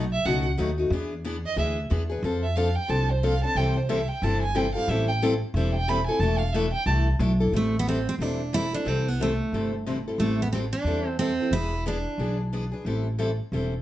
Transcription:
Already playing: upright bass B1
0.12 violin E5
0.25 upright bass C#2, steel-string acoustic guitar B2 F#3 A3 D#4 F#4, violin F#5
0.58 upright bass D#2, steel-string acoustic guitar B2 F#3 A3 D#4 F#4
0.78 steel-string acoustic guitar A3 D#4 F#4
0.90 upright bass E2, steel-string acoustic guitar E3 B3 D4 G#4
1.25 steel-string acoustic guitar E3 B3 D4 G#4
1.46 violin D#5
1.56 upright bass D2, steel-string acoustic guitar E3 B3 D4 G#4, violin E5
1.90 upright bass E2, steel-string acoustic guitar E3 B3 D4 G#4
2.10 steel-string acoustic guitar B3 D4 G#4
2.23 upright bass F2, steel-string acoustic guitar F3 C4 D4 A4
2.43 violin E5
2.56 steel-string acoustic guitar F3 C4 D4 A4, violin F5
2.75 violin G5
2.88 upright bass C2, steel-string acoustic guitar F3 C4 D4 A4, violin A5
3.11 violin C5
3.23 steel-string acoustic guitar F3 C4 D4 A4, violin F5
3.44 steel-string acoustic guitar C4 D4 A4, violin A5
3.55 upright bass C2, steel-string acoustic guitar C3 E3 G3 C4 E4 A4, violin G5
3.77 violin C5
3.89 steel-string acoustic guitar C3 E3 G3 C4 E4 A4, violin E5
4.08 violin G5
4.22 upright bass G1, steel-string acoustic guitar C3 E3 G3 C4 E4 A4, violin A5
4.42 violin G#5
4.55 steel-string acoustic guitar C3 E3 G3 C4 E4 A4, violin G5
4.75 steel-string acoustic guitar G3 C4 E4 A4, violin F5
4.88 upright bass A1, steel-string acoustic guitar E3 G3 C4 E4 A4, violin E5
5.08 violin G5
5.22 steel-string acoustic guitar E3 G3 C4 E4 A4
5.54 upright bass E1, steel-string acoustic guitar E3 G3 C4 E4 A4, violin E5
5.75 violin G5
5.88 steel-string acoustic guitar E3 G3 C4 E4 A4, violin B5
6.07 steel-string acoustic guitar E4 A4, violin G#5
6.11 steel-string acoustic guitar C4
6.19 upright bass E1, steel-string acoustic guitar E3 A3 D4 E4 A4, violin A5
6.38 violin F5
6.53 steel-string acoustic guitar E3 A3 D4 E4 A4, violin E5
6.73 violin G5
6.86 upright bass C2, steel-string acoustic guitar E3 A3 D4 E4 A4, violin A5
7.19 upright bass B1, steel-string acoustic guitar E3 A3 D4 E4 A4
7.40 steel-string acoustic guitar D4 E4 A4
7.52 upright bass A1, steel-string acoustic guitar E3 G3 C4 E4 A4
7.56 steel-string acoustic guitar A3
7.79 steel-string acoustic guitar B3
7.87 steel-string acoustic guitar E3 G3 C4 E4 A4
8.09 steel-string acoustic guitar C4
8.19 upright bass E1, steel-string acoustic guitar E3 G3 C4 D4 E4 A4
8.53 steel-string acoustic guitar E3 G3 C4 E4 A4
8.73 steel-string acoustic guitar C4 D4 E4 A4
8.85 upright bass C2, steel-string acoustic guitar C3 E3 G3 C4 E4 A4
9.08 steel-string acoustic guitar B3
9.20 steel-string acoustic guitar C3 E3 G3 A3 C4 E4 A4
9.52 upright bass G1, steel-string acoustic guitar C3 E3 G3 C4 E4 A4
9.86 steel-string acoustic guitar C3 E3 G3 C4 E4 A4
10.08 steel-string acoustic guitar G3 C4 E4 A4
10.18 upright bass A1, steel-string acoustic guitar E3 G3 A3 C4 E4 A4
10.42 steel-string acoustic guitar B3
10.53 steel-string acoustic guitar E3 G3 C4 E4 A4
10.73 steel-string acoustic guitar D4
10.84 upright bass E2, steel-string acoustic guitar E3 G3 C4 E4 A4
11.19 steel-string acoustic guitar E3 G3 C4 E4 A4
11.40 steel-string acoustic guitar C4 E4 A4
11.51 upright bass E1, steel-string acoustic guitar E3 B3 D4 E4 G#4
11.86 steel-string acoustic guitar E3 B3 D4 G#4
12.18 upright bass B1, steel-string acoustic guitar E3 B3 D4 G#4
12.53 steel-string acoustic guitar E3 B3 D4 G#4
12.72 steel-string acoustic guitar B3 D4 G#4
12.85 upright bass A1, steel-string acoustic guitar E3 G3 C4 E4 A4
13.18 steel-string acoustic guitar E3 G3 C4 E4 A4
13.52 upright bass E1, steel-string acoustic guitar E3 G3 C4 E4 A4

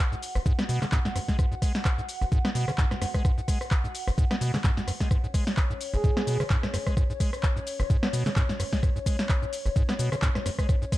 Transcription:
Already playing: analog synth pad F#5
0.12 acid bass G#2, shaker
0.23 open hi-hat, shaker
0.35 acid bass G#1, cross-stick, shaker
0.46 acid bass G#2, kick, shaker
0.59 acid bass B3, cross-stick, snare, shaker
0.69 acid bass B2, open hi-hat, shaker
0.81 acid bass C#3, cross-stick, snare, clap, shaker
0.92 acid bass G#2, kick, snare, clap, shaker
1.05 acid bass G#2, snare, shaker
1.16 acid bass F#2, cross-stick, open hi-hat, shaker
1.28 acid bass G#3, kick, snare, shaker
1.39 acid bass G#2, kick, cross-stick, shaker
1.52 acid bass G#2, shaker
1.62 acid bass G#3, kick, cross-stick, open hi-hat, shaker
1.75 snare, shaker
1.85 kick, cross-stick, clap, shaker
1.98 acid bass G#2, shaker
2.09 open hi-hat, shaker
2.21 acid bass G#1, cross-stick, shaker
2.32 acid bass G#2, kick, shaker
2.45 acid bass B3, cross-stick, snare, shaker
2.55 acid bass B2, open hi-hat, shaker
2.68 acid bass C#3, cross-stick, shaker
2.78 acid bass G#2, kick, clap, shaker
2.91 acid bass G#2, cross-stick, snare, shaker
3.02 acid bass F#2, cross-stick, snare, open hi-hat, shaker
3.14 acid bass G#3, kick, cross-stick, shaker
3.25 acid bass G#2, kick, cross-stick, shaker
3.38 acid bass G#2, shaker
3.48 acid bass G#3, kick, cross-stick, open hi-hat, shaker
3.61 cross-stick, shaker
3.71 kick, cross-stick, clap, shaker
3.84 acid bass G#2, shaker
3.95 open hi-hat, shaker
4.07 acid bass G#1, cross-stick, shaker
4.18 acid bass G#2, kick, shaker
4.31 acid bass B3, cross-stick, snare, shaker
4.41 acid bass B2, open hi-hat, shaker
4.53 acid bass C#3, cross-stick, snare, clap, shaker
4.64 acid bass G#2, kick, snare, clap, shaker
4.77 acid bass G#2, snare, shaker
4.88 acid bass F#2, cross-stick, open hi-hat, shaker
5.00 acid bass G#3, kick, snare, shaker
5.11 acid bass G#2, analog synth pad C#5, kick, cross-stick, shaker
5.24 acid bass G#2, shaker
5.34 acid bass G#3, kick, cross-stick, open hi-hat, shaker
5.47 snare, shaker
5.57 kick, cross-stick, clap, shaker
5.70 acid bass G#2, shaker
5.81 open hi-hat, shaker
5.94 acid bass G#1, soft synth lead G#4, cross-stick, shaker
6.04 acid bass G#2, kick, shaker
6.17 acid bass B3, cross-stick, snare, shaker
6.27 acid bass B2, open hi-hat, shaker
6.40 acid bass C#3, cross-stick, shaker
6.50 acid bass G#2, kick, clap, shaker
6.63 acid bass G#2, cross-stick, snare, shaker
6.74 acid bass F#2, cross-stick, snare, open hi-hat, shaker
6.87 acid bass G#3, kick, cross-stick, shaker
6.97 acid bass G#2, kick, cross-stick, shaker
7.10 acid bass G#2, shaker
7.20 acid bass G#3, kick, cross-stick, open hi-hat, shaker
7.33 cross-stick, shaker
7.43 kick, cross-stick, clap, shaker
7.56 acid bass G#2, shaker
7.67 open hi-hat, shaker
7.80 acid bass G#1, cross-stick, shaker
7.90 acid bass G#2, kick, shaker
8.03 acid bass B3, cross-stick, snare, shaker
8.13 acid bass B2, open hi-hat, shaker
8.26 acid bass C#3, cross-stick, snare, clap, shaker
8.36 acid bass G#2, kick, snare, clap, shaker
8.49 acid bass G#2, snare, shaker
8.60 acid bass F#2, cross-stick, open hi-hat, shaker
8.73 acid bass G#3, kick, snare, shaker
8.83 acid bass G#2, kick, cross-stick, shaker
8.96 acid bass G#2, shaker
9.06 acid bass G#3, kick, cross-stick, open hi-hat, shaker
9.19 snare, shaker
9.29 kick, cross-stick, clap, shaker
9.42 acid bass G#2, shaker
9.53 open hi-hat, shaker
9.66 acid bass G#1, cross-stick, shaker
9.76 acid bass G#2, kick, shaker
9.89 acid bass B3, cross-stick, snare, shaker
9.99 acid bass B2, open hi-hat, shaker
10.12 acid bass C#3, cross-stick, shaker
10.22 acid bass G#2, kick, clap, shaker
10.35 acid bass G#2, cross-stick, snare, shaker
10.46 acid bass F#2, cross-stick, snare, open hi-hat, shaker
10.59 acid bass G#3, kick, cross-stick, shaker
10.69 acid bass G#2, kick, cross-stick, shaker
10.82 acid bass G#2, shaker
10.92 acid bass G#3, kick, cross-stick, open hi-hat, shaker

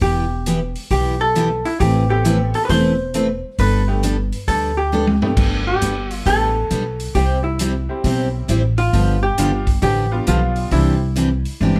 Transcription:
0.01 upright bass E1, steel-string acoustic guitar E3 B3 E4 G4, hollow-body jazz guitar G4, kick, open hi-hat
0.46 steel-string acoustic guitar E3 B3 E4 G4, closed hi-hat
0.75 open hi-hat
0.90 upright bass B1, steel-string acoustic guitar E3 B3 E4 G4, hollow-body jazz guitar G4, kick, open hi-hat
1.21 hollow-body jazz guitar A4
1.35 steel-string acoustic guitar E3 B3 E4 G4, closed hi-hat
1.65 hollow-body jazz guitar E4, open hi-hat
1.80 upright bass A1, steel-string acoustic guitar E3 A3 C4 E4 B4, hollow-body jazz guitar G4, kick, open hi-hat
2.09 upright piano B3 C4 E4 A4, hollow-body jazz guitar G4
2.25 steel-string acoustic guitar E3 A3 C4 E4 B4, closed hi-hat
2.54 hollow-body jazz guitar A4, open hi-hat
2.65 hollow-body jazz guitar B4
2.69 upright bass E1, steel-string acoustic guitar E3 A3 C4 E4 B4, hollow-body jazz guitar C5, kick, open hi-hat
3.14 steel-string acoustic guitar E3 A3 C4 E4 B4, closed hi-hat
3.58 upright bass G1, steel-string acoustic guitar G3 B3 D4 A4, hollow-body jazz guitar B4, kick, open hi-hat
3.87 upright piano A3 B3 D4 G4
4.03 steel-string acoustic guitar G3 B3 D4 A4, closed hi-hat
4.32 open hi-hat
4.48 upright bass D2, steel-string acoustic guitar G3 B3 D4 A4, hollow-body jazz guitar A4, kick, open hi-hat
4.77 hollow-body jazz guitar G4
4.92 steel-string acoustic guitar G3 B3 D4 A4, high tom
5.07 high tom
5.22 upright piano A3 B3 D4 G4, floor tom
5.37 upright bass G1, steel-string acoustic guitar G3 B3 D4 A4, kick, crash
5.67 hollow-body jazz guitar G4
5.82 upright bass G1, steel-string acoustic guitar G3 B3 D4 A4, closed hi-hat
6.11 hollow-body jazz guitar F4, open hi-hat
6.25 upright bass A1, steel-string acoustic guitar G3 B3 D4 A4, upright piano A3 B3 D4 G4, hollow-body jazz guitar A4, kick, open hi-hat
6.70 upright bass B1, steel-string acoustic guitar G3 B3 D4 A4, closed hi-hat
7.00 open hi-hat
7.15 upright bass C2, steel-string acoustic guitar C3 G3 C4 E4 G4, hollow-body jazz guitar G4, kick, open hi-hat
7.44 hollow-body jazz guitar E4
7.59 steel-string acoustic guitar C3 G3 C4 E4 G4, closed hi-hat
7.89 upright piano G3 C4 E4 G4
8.04 upright bass B1, steel-string acoustic guitar C3 G3 C4 E4 G4, kick, open hi-hat
8.48 upright bass A1, steel-string acoustic guitar C3 G3 C4 E4 G4, closed hi-hat
8.78 hollow-body jazz guitar F4, open hi-hat
8.93 upright bass G1, steel-string acoustic guitar D3 F3 B3 D4 G4, kick, open hi-hat
9.23 hollow-body jazz guitar G4
9.38 upright bass G1, steel-string acoustic guitar D3 F3 B3 D4 G4, upright piano G3 B3 D4 F4, closed hi-hat
9.67 kick, open hi-hat
9.82 upright bass A1, steel-string acoustic guitar D3 F3 B3 D4 G4, hollow-body jazz guitar G4, kick, open hi-hat
10.11 upright piano G3 B3 D4 F4
10.27 upright bass B1, steel-string acoustic guitar D3 F3 B3 D4 G4, hollow-body jazz guitar F4, closed hi-hat
10.56 open hi-hat
10.71 upright bass C2, steel-string acoustic guitar C3 E3 D4 G4, upright piano G3 C4 D4 E4, hollow-body jazz guitar E4, kick, open hi-hat
11.16 steel-string acoustic guitar C3 E3 D4 G4, closed hi-hat
11.45 open hi-hat
11.60 upright bass G1, steel-string acoustic guitar C3 E3 D4 G4, high tom
11.76 high tom

